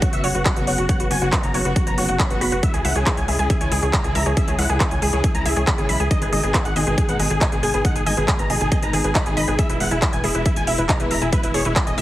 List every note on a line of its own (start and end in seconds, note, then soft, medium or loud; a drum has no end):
0.02 0.10 F#4 medium
0.02 0.06 C#5 medium
0.02 kick loud
0.02 closed hi-hat medium
0.13 0.22 F#1 medium
0.13 0.28 C#3 medium
0.13 0.28 F#3 medium
0.13 0.28 B3 medium
0.13 0.28 F#4 medium
0.13 0.21 E5 medium
0.13 0.16 F#5 medium
0.13 closed hi-hat medium
0.24 0.33 F#1 loud
0.24 0.31 F#4 medium
0.24 0.30 C#5 loud
0.24 open hi-hat loud
0.35 0.43 F#1 medium
0.35 0.42 F#4 medium
0.35 0.41 B4 medium
0.35 closed hi-hat medium
0.45 0.53 C#3 medium
0.45 0.53 F#3 medium
0.45 0.53 B3 medium
0.45 0.51 F#4 loud
0.45 0.53 F#4 medium
0.45 kick loud
0.45 clap loud
0.45 closed hi-hat medium
0.56 0.65 F#1 medium
0.56 0.72 C#3 medium
0.56 0.72 F#3 medium
0.56 0.72 B3 medium
0.56 0.64 F#4 medium
0.56 0.72 F#4 medium
0.56 0.60 B4 medium
0.56 closed hi-hat soft
0.67 0.76 F#1 medium
0.67 0.71 C#5 medium
0.67 0.75 F#5 medium
0.67 open hi-hat medium
0.78 0.87 F#1 medium
0.78 0.86 F#4 medium
0.78 0.82 F#5 medium
0.78 closed hi-hat soft
0.89 1.04 C#3 medium
0.89 1.04 F#3 medium
0.89 1.04 B3 medium
0.89 1.04 F#4 medium
0.89 0.95 C#5 loud
0.89 0.97 F#5 medium
0.89 kick loud
0.89 closed hi-hat medium
1.00 1.09 F#1 medium
1.00 1.07 F#4 medium
1.00 1.06 B4 medium
1.00 closed hi-hat medium
1.11 1.19 F#1 medium
1.11 1.18 C#3 medium
1.11 1.18 F#3 medium
1.11 1.18 B3 medium
1.11 1.17 F#4 medium
1.11 1.18 F#4 medium
1.11 1.18 G#5 medium
1.11 open hi-hat loud
1.22 1.30 F#1 medium
1.22 1.37 C#3 medium
1.22 1.37 F#3 medium
1.22 1.37 B3 medium
1.22 1.37 F#4 medium
1.22 1.29 F#4 medium
1.22 1.25 B4 medium
1.22 closed hi-hat soft
1.33 1.36 C#5 medium
1.33 kick loud
1.33 clap loud
1.33 closed hi-hat medium
1.43 1.52 F#1 medium
1.43 1.47 F#5 medium
1.43 1.51 A#5 medium
1.43 closed hi-hat medium
1.54 1.63 F#1 loud
1.54 1.62 C#3 medium
1.54 1.62 F#3 medium
1.54 1.62 B3 medium
1.54 1.62 F#4 medium
1.54 1.60 C#5 medium
1.54 open hi-hat medium
1.65 1.74 F#1 medium
1.65 1.80 C#3 medium
1.65 1.80 F#3 medium
1.65 1.80 B3 medium
1.65 1.73 F#4 medium
1.65 1.80 F#4 medium
1.65 1.71 B4 medium
1.65 closed hi-hat soft
1.76 1.83 F#4 medium
1.76 1.82 F#4 loud
1.76 kick loud
1.76 closed hi-hat medium
1.87 1.96 F#1 medium
1.87 2.02 C#3 medium
1.87 2.02 F#3 medium
1.87 2.02 B3 medium
1.87 2.02 F#4 medium
1.87 1.90 B4 medium
1.87 1.94 A#5 medium
1.87 closed hi-hat medium
1.98 2.06 F#1 medium
1.98 2.05 F#4 medium
1.98 2.01 C#5 medium
1.98 open hi-hat loud
2.09 2.17 F#1 medium
2.09 2.16 F#4 medium
2.09 2.12 F#5 medium
2.09 closed hi-hat medium
2.19 2.27 C#3 medium
2.19 2.27 F#3 medium
2.19 2.27 B3 medium
2.19 2.27 F#4 medium
2.19 2.25 C#5 loud
2.19 2.27 B5 medium
2.19 kick loud
2.19 clap loud
2.19 closed hi-hat medium
2.30 2.39 F#1 medium
2.30 2.46 C#3 medium
2.30 2.46 F#3 medium
2.30 2.46 B3 medium
2.30 2.46 F#4 medium
2.30 2.38 F#4 medium
2.30 2.36 B4 medium
2.30 closed hi-hat soft
2.41 2.50 F#1 medium
2.41 2.47 F#4 loud
2.41 2.49 B5 medium
2.41 open hi-hat medium
2.52 2.61 F#1 medium
2.52 2.60 F#4 medium
2.52 2.56 B4 medium
2.52 closed hi-hat soft
2.63 2.78 C#3 medium
2.63 2.78 E3 medium
2.63 2.78 G#3 medium
2.63 2.78 E4 medium
2.63 2.66 E5 medium
2.63 2.71 E5 medium
2.63 kick loud
2.63 closed hi-hat medium
2.74 2.83 C#2 medium
2.74 2.81 G#4 medium
2.74 2.77 G#5 medium
2.74 closed hi-hat soft
2.85 2.93 C#2 medium
2.85 2.92 C#3 medium
2.85 2.92 E3 medium
2.85 2.92 G#3 medium
2.85 2.92 E4 medium
2.85 2.90 E5 medium
2.85 2.92 F#5 medium
2.85 open hi-hat loud
2.96 3.04 C#2 medium
2.96 3.11 C#3 medium
2.96 3.11 E3 medium
2.96 3.11 G#3 medium
2.96 3.11 E4 medium
2.96 3.03 G#4 medium
2.96 3.01 C#5 medium
2.96 closed hi-hat soft
3.06 3.12 G#4 loud
3.06 3.14 G#4 medium
3.06 kick loud
3.06 clap loud
3.06 closed hi-hat medium
3.17 3.26 C#2 medium
3.17 3.21 C#5 medium
3.17 3.25 G#5 medium
3.17 closed hi-hat soft
3.28 3.37 C#2 loud
3.28 3.36 C#3 medium
3.28 3.36 E3 medium
3.28 3.36 G#3 medium
3.28 3.36 E4 medium
3.28 3.36 G#4 medium
3.28 3.32 E5 medium
3.28 open hi-hat medium
3.39 3.48 C#2 medium
3.39 3.54 C#3 medium
3.39 3.54 E3 medium
3.39 3.54 G#3 medium
3.39 3.54 E4 medium
3.39 3.47 G#4 medium
3.39 3.43 G#5 medium
3.39 closed hi-hat soft
3.50 3.58 G#4 medium
3.50 3.56 E5 loud
3.50 kick loud
3.50 closed hi-hat medium
3.61 3.70 C#2 medium
3.61 3.76 C#3 medium
3.61 3.76 E3 medium
3.61 3.76 G#3 medium
3.61 3.76 E4 medium
3.61 3.67 C#5 medium
3.61 3.68 G#5 medium
3.61 closed hi-hat soft
3.72 3.80 C#2 loud
3.72 3.77 G#4 loud
3.72 3.79 G#4 medium
3.72 open hi-hat loud
3.83 3.91 C#2 medium
3.83 3.90 G#4 medium
3.83 3.86 C#5 medium
3.83 closed hi-hat medium
3.93 4.01 C#3 medium
3.93 4.01 E3 medium
3.93 4.01 G#3 medium
3.93 4.01 E4 medium
3.93 3.97 E5 medium
3.93 4.01 A#5 medium
3.93 kick loud
3.93 clap loud
3.93 closed hi-hat medium
4.04 4.13 C#2 medium
4.04 4.20 C#3 medium
4.04 4.20 E3 medium
4.04 4.20 G#3 medium
4.04 4.20 E4 medium
4.04 4.12 G#4 medium
4.04 4.08 G#5 medium
4.04 closed hi-hat soft
4.15 4.24 C#2 loud
4.15 4.21 E5 loud
4.15 4.23 A#5 medium
4.15 open hi-hat medium
4.26 4.35 C#2 medium
4.26 4.34 G#4 medium
4.26 4.32 C#5 medium
4.26 closed hi-hat soft
4.37 4.52 C#3 medium
4.37 4.52 E3 medium
4.37 4.52 G#3 medium
4.37 4.52 E4 medium
4.37 4.43 G#4 medium
4.37 4.44 E5 medium
4.37 kick loud
4.37 closed hi-hat medium
4.48 4.57 C#2 medium
4.48 4.55 G#4 medium
4.48 4.51 C#5 medium
4.48 closed hi-hat soft
4.59 4.67 C#2 loud
4.59 4.66 C#3 medium
4.59 4.66 E3 medium
4.59 4.66 G#3 medium
4.59 4.66 E4 medium
4.59 4.62 E5 medium
4.59 4.66 F#5 medium
4.59 open hi-hat loud
4.69 4.78 C#2 loud
4.69 4.85 C#3 medium
4.69 4.85 E3 medium
4.69 4.85 G#3 medium
4.69 4.85 E4 medium
4.69 4.77 G#4 medium
4.69 4.73 G#5 medium
4.69 closed hi-hat soft
4.80 4.88 G#4 medium
4.80 4.86 E5 loud
4.80 kick loud
4.80 clap loud
4.80 closed hi-hat medium
4.91 5.00 C#2 medium
4.91 4.97 C#5 medium
4.91 4.99 G#5 medium
4.91 closed hi-hat soft
5.02 5.11 C#2 loud
5.02 5.10 C#3 medium
5.02 5.10 E3 medium
5.02 5.10 G#3 medium
5.02 5.10 E4 medium
5.02 5.08 G#4 medium
5.02 5.10 G#4 medium
5.02 open hi-hat medium
5.13 5.22 C#2 medium
5.13 5.28 C#3 medium
5.13 5.28 E3 medium
5.13 5.28 G#3 medium
5.13 5.28 E4 medium
5.13 5.21 G#4 medium
5.13 5.16 C#5 medium
5.13 closed hi-hat soft
5.24 5.31 G#4 medium
5.24 5.27 E5 medium
5.24 kick loud
5.24 closed hi-hat medium
5.35 5.43 C#2 medium
5.35 5.50 C#3 medium
5.35 5.50 E3 medium
5.35 5.50 G#3 medium
5.35 5.50 E4 medium
5.35 5.38 G#5 medium
5.35 5.42 A#5 medium
5.35 closed hi-hat soft
5.45 5.54 C#2 medium
5.45 5.53 G#4 medium
5.45 5.51 E5 loud
5.45 open hi-hat loud
5.56 5.65 C#2 medium
5.56 5.64 G#4 medium
5.56 5.62 C#5 medium
5.56 closed hi-hat soft
5.67 5.75 C#3 medium
5.67 5.75 E3 medium
5.67 5.75 G#3 medium
5.67 5.75 E4 medium
5.67 5.73 G#4 loud
5.67 5.75 B5 medium
5.67 kick loud
5.67 clap loud
5.67 closed hi-hat medium
5.78 5.87 G#1 medium
5.78 5.93 C#3 medium
5.78 5.93 E3 medium
5.78 5.93 G#3 medium
5.78 5.93 E4 medium
5.78 5.86 G#4 medium
5.78 5.82 C#5 medium
5.78 closed hi-hat soft
5.89 5.98 B1 loud
5.89 5.93 E5 medium
5.89 5.97 B5 medium
5.89 open hi-hat medium
6.00 6.09 C#2 medium
6.00 6.08 G#4 medium
6.00 6.03 G#5 medium
6.00 closed hi-hat soft
6.11 6.26 B2 medium
6.11 6.26 D#3 medium
6.11 6.26 G#3 medium
6.11 6.26 D#4 medium
6.11 6.17 D#5 loud
6.11 6.18 D#5 medium
6.11 kick loud
6.11 closed hi-hat medium
6.22 6.30 G#1 medium
6.22 6.29 G#4 medium
6.22 6.27 B4 medium
6.22 closed hi-hat soft
6.32 6.41 G#1 medium
6.32 6.40 B2 medium
6.32 6.40 D#3 medium
6.32 6.40 G#3 medium
6.32 6.40 D#4 medium
6.32 6.38 G#4 medium
6.32 6.40 D#5 medium
6.32 open hi-hat medium
6.43 6.52 G#1 medium
6.43 6.59 B2 medium
6.43 6.59 D#3 medium
6.43 6.59 G#3 medium
6.43 6.59 D#4 medium
6.43 6.51 G#4 medium
6.43 6.47 B4 medium
6.43 closed hi-hat soft
6.54 6.62 G#4 medium
6.54 6.58 D#5 medium
6.54 kick loud
6.54 clap loud
6.54 closed hi-hat medium
6.65 6.74 G#1 medium
6.65 6.73 F#5 medium
6.65 6.69 G#5 medium
6.65 closed hi-hat soft
6.76 6.85 G#1 loud
6.76 6.84 B2 medium
6.76 6.84 D#3 medium
6.76 6.84 G#3 medium
6.76 6.84 D#4 medium
6.76 6.84 G#4 medium
6.76 6.82 D#5 loud
6.76 open hi-hat medium
6.87 6.96 G#1 medium
6.87 7.02 B2 medium
6.87 7.02 D#3 medium
6.87 7.02 G#3 medium
6.87 7.02 D#4 medium
6.87 6.94 G#4 medium
6.87 6.93 B4 medium
6.87 closed hi-hat soft
6.98 7.04 G#4 medium
6.98 7.05 G#4 medium
6.98 kick loud
6.98 closed hi-hat medium
7.09 7.17 G#1 medium
7.09 7.24 B2 medium
7.09 7.24 D#3 medium
7.09 7.24 G#3 medium
7.09 7.24 D#4 medium
7.09 7.12 B4 medium
7.09 7.16 F#5 medium
7.09 closed hi-hat soft
7.19 7.28 G#1 loud
7.19 7.27 G#4 medium
7.19 7.23 D#5 medium
7.19 open hi-hat loud
7.30 7.39 G#1 medium
7.30 7.38 G#4 medium
7.30 7.34 G#5 medium
7.30 closed hi-hat medium
7.41 7.49 B2 medium
7.41 7.49 D#3 medium
7.41 7.49 G#3 medium
7.41 7.49 D#4 medium
7.41 7.47 D#5 loud
7.41 7.49 G#5 medium
7.41 kick loud
7.41 clap loud
7.41 closed hi-hat medium
7.52 7.61 G#1 medium
7.52 7.67 B2 medium
7.52 7.67 D#3 medium
7.52 7.67 G#3 medium
7.52 7.67 D#4 medium
7.52 7.60 G#4 medium
7.52 7.58 B4 medium
7.52 closed hi-hat soft
7.63 7.72 G#1 medium
7.63 7.69 G#4 loud
7.63 7.71 G#5 medium
7.63 open hi-hat medium
7.74 7.83 G#1 medium
7.74 7.81 G#4 medium
7.74 7.77 B4 medium
7.74 closed hi-hat soft
7.85 8.00 B2 medium
7.85 8.00 D#3 medium
7.85 8.00 G#3 medium
7.85 8.00 D#4 medium
7.85 7.88 D#5 medium
7.85 7.92 F#5 medium
7.85 kick loud
7.85 closed hi-hat medium
7.96 8.04 G#1 medium
7.96 8.03 G#4 medium
7.96 7.99 G#5 medium
7.96 closed hi-hat medium
8.06 8.15 G#1 medium
8.06 8.14 B2 medium
8.06 8.14 D#3 medium
8.06 8.14 G#3 medium
8.06 8.14 D#4 medium
8.06 8.12 D#5 loud
8.06 8.14 G#5 medium
8.06 open hi-hat loud
8.17 8.26 G#1 loud
8.17 8.33 B2 medium
8.17 8.32 D#3 medium
8.17 8.33 G#3 medium
8.17 8.32 D#4 medium
8.17 8.25 G#4 medium
8.17 8.23 B4 medium
8.17 closed hi-hat soft
8.28 8.34 G#4 loud
8.28 8.36 G#4 medium
8.28 kick loud
8.28 clap loud
8.28 closed hi-hat medium
8.39 8.48 G#1 medium
8.39 8.43 B4 medium
8.39 8.47 A#5 medium
8.39 closed hi-hat soft
8.50 8.59 G#1 medium
8.50 8.58 B2 medium
8.50 8.58 D#3 medium
8.50 8.58 G#3 medium
8.50 8.58 D#4 medium
8.50 8.58 G#4 medium
8.50 8.53 D#5 medium
8.50 open hi-hat medium
8.61 8.70 G#1 medium
8.61 8.76 B2 medium
8.61 8.76 D#3 medium
8.61 8.76 G#3 medium
8.61 8.76 D#4 medium
8.61 8.68 G#4 medium
8.61 8.64 G#5 medium
8.61 closed hi-hat medium
8.72 8.79 G#4 medium
8.72 8.77 D#5 loud
8.72 kick loud
8.72 closed hi-hat medium
8.83 8.91 G#1 medium
8.83 8.98 B2 medium
8.83 8.98 D#3 medium
8.83 8.98 G#3 medium
8.83 8.98 D#4 medium
8.83 8.88 B4 medium
8.83 8.90 A#5 medium
8.83 closed hi-hat medium
8.93 9.02 G#1 medium
8.93 8.99 G#4 loud
8.93 9.01 G#4 medium
8.93 open hi-hat loud
9.04 9.13 G#1 medium
9.04 9.12 G#4 medium
9.04 9.08 B4 medium
9.04 closed hi-hat medium
9.15 9.23 B2 medium
9.15 9.23 D#3 medium
9.15 9.23 G#3 medium
9.15 9.23 D#4 medium
9.15 9.19 D#5 medium
9.15 9.23 B5 medium
9.15 kick loud
9.15 clap loud
9.15 closed hi-hat medium
9.26 9.35 G#1 medium
9.26 9.41 B2 medium
9.26 9.41 D#3 medium
9.26 9.41 G#3 medium
9.26 9.41 D#4 medium
9.26 9.34 G#4 medium
9.26 9.29 G#5 medium
9.26 closed hi-hat soft
9.37 9.46 G#1 medium
9.37 9.43 D#5 loud
9.37 9.44 B5 medium
9.37 open hi-hat medium
9.48 9.57 G#1 medium
9.48 9.55 G#4 medium
9.48 9.54 B4 medium
9.48 closed hi-hat soft
9.59 9.74 B2 medium
9.59 9.74 E3 medium
9.59 9.74 G#3 medium
9.59 9.74 E4 medium
9.59 9.64 G#4 loud
9.59 9.66 E5 medium
9.59 kick loud
9.59 closed hi-hat medium
9.70 9.78 E1 medium
9.70 9.77 E4 medium
9.70 9.73 B4 medium
9.70 closed hi-hat medium
9.80 9.89 E1 medium
9.80 9.88 B2 medium
9.80 9.88 E3 medium
9.80 9.88 G#3 medium
9.80 9.88 E4 medium
9.80 9.84 E5 medium
9.80 9.88 F#5 medium
9.80 open hi-hat medium
9.91 10.00 E1 medium
9.91 10.06 B2 medium
9.91 10.07 E3 medium
9.91 10.06 G#3 medium
9.91 9.99 E4 medium
9.91 10.06 E4 medium
9.91 9.95 G#5 medium
9.91 closed hi-hat medium
10.02 10.10 E4 medium
10.02 10.08 E5 loud
10.02 kick loud
10.02 clap loud
10.02 closed hi-hat medium
10.13 10.22 E1 medium
10.13 10.19 B4 medium
10.13 10.21 G#5 medium
10.13 closed hi-hat medium
10.24 10.33 E1 loud
10.24 10.32 B2 medium
10.24 10.32 E3 medium
10.24 10.32 G#3 medium
10.24 10.32 E4 medium
10.24 10.31 E4 medium
10.24 10.30 G#4 loud
10.24 open hi-hat medium
10.35 10.43 E1 medium
10.35 10.50 B2 medium
10.35 10.50 E3 medium
10.35 10.50 G#3 medium
10.35 10.42 E4 medium
10.35 10.50 E4 medium
10.35 10.38 B4 medium
10.35 closed hi-hat medium
10.45 10.53 E4 medium
10.45 10.49 E5 medium
10.45 kick loud
10.45 closed hi-hat medium
10.56 10.65 E1 medium
10.56 10.72 B2 medium
10.56 10.72 E3 medium
10.56 10.72 G#3 medium
10.56 10.72 E4 medium
10.56 10.64 G#5 medium
10.56 10.60 G#5 medium
10.56 closed hi-hat medium
10.67 10.76 E1 loud
10.67 10.75 E4 medium
10.67 10.73 E5 loud
10.67 open hi-hat loud
10.78 10.87 E1 loud
10.78 10.86 E4 medium
10.78 10.84 B4 medium
10.78 closed hi-hat medium
10.89 10.97 B2 medium
10.89 10.97 E3 medium
10.89 10.97 G#3 medium
10.89 10.97 E4 medium
10.89 10.95 G#4 loud
10.89 10.97 A#5 medium
10.89 kick loud
10.89 clap loud
10.89 closed hi-hat medium
11.00 11.09 E1 medium
11.00 11.15 B2 medium
11.00 11.15 E3 medium
11.00 11.15 G#3 medium
11.00 11.15 E4 medium
11.00 11.08 E4 medium
11.00 11.03 B4 medium
11.00 closed hi-hat soft
11.11 11.20 E1 medium
11.11 11.14 E5 medium
11.11 11.18 A#5 medium
11.11 open hi-hat medium
11.22 11.30 E1 medium
11.22 11.29 E4 medium
11.22 11.25 G#5 medium
11.22 closed hi-hat soft
11.33 11.48 B2 medium
11.33 11.48 E3 medium
11.33 11.48 G#3 medium
11.33 11.48 E4 medium
11.33 11.40 B4 medium
11.33 11.38 E5 loud
11.33 kick loud
11.33 closed hi-hat medium
11.43 11.52 E1 medium
11.43 11.51 E4 medium
11.43 11.49 B4 medium
11.43 closed hi-hat medium
11.54 11.63 E1 medium
11.54 11.62 B2 medium
11.54 11.62 E3 medium
11.54 11.62 G#3 medium
11.54 11.62 E4 medium
11.54 11.60 G#4 medium
11.54 11.62 C#5 medium
11.54 open hi-hat loud
11.65 11.74 E1 medium
11.65 11.80 B2 medium
11.65 11.80 E3 medium
11.65 11.80 G#3 medium
11.65 11.80 E4 medium
11.65 11.73 E4 medium
11.65 11.69 B4 medium
11.65 closed hi-hat soft
11.76 11.84 E4 medium
11.76 11.80 E5 medium
11.76 kick loud
11.76 clap loud
11.76 closed hi-hat medium
11.87 11.96 E1 medium
11.87 11.94 D#5 medium
11.87 11.90 G#5 medium
11.87 closed hi-hat medium
11.98 12.02 E1 loud
11.98 12.02 B2 medium
11.98 12.02 E3 medium
11.98 12.02 G#3 medium
11.98 12.02 E4 medium
11.98 12.02 E5 loud
11.98 open hi-hat medium